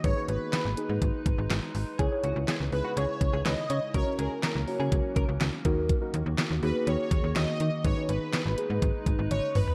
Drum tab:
HH |x-x-x-x-x-x-x-o-|x-x-x-o-x-x-x-x-|x-x-x-o-x-x-x-x-|x-x-x-o-x-x-x-x-|
CP |----x-------x---|----x-------x---|----x-------x---|----x-------x---|
SD |----o-------o---|----o-------o---|----o-------o---|----o-------o---|
T1 |----------------|----------------|----------------|----------------|
T2 |----------------|----------------|----------------|----------------|
FT |----------------|----------------|----------------|----------------|
BD |o-------o-o-----|o---------o-----|o-------o-o---o-|o---------o-----|

HH |x-x-x-x-x-x-x-o-|
CP |----x-----------|
SD |----o-----------|
T1 |------------o---|
T2 |--------------o-|
FT |---------------o|
BD |o-------o-o-----|